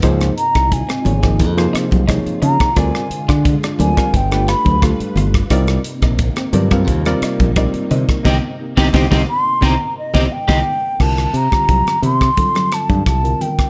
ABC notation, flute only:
X:1
M:4/4
L:1/8
Q:1/4=88
K:Cm
V:1 name="Flute"
z b a2 z3 b | a2 z a g =b z2 | z8 | z3 c' b e g2 |
=a b2 c'2 a a g |]